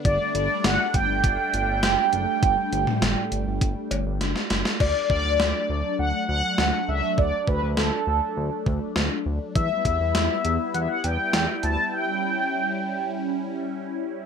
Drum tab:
CC |----------------|----------------|x---------------|----------------|
HH |x-x-x-x-x-x-x-x-|x-x-x-x-x-x-x-x-|----------------|----------------|
CB |----------------|----------x-----|----------------|----------------|
SD |----o-------o---|----o-------oooo|----o-------o---|----o-------o---|
T2 |----------------|---o------------|----------------|----------------|
BD |o-----o-o-------|o-------o-------|o-o-------------|o-o-------o-----|

CC |----------------|----------------|
HH |x-x-x-x-x-x-x-x-|----------------|
CB |----------------|----------------|
SD |----o-------o---|----------------|
T2 |----------------|----------------|
BD |o-o-------------|----------------|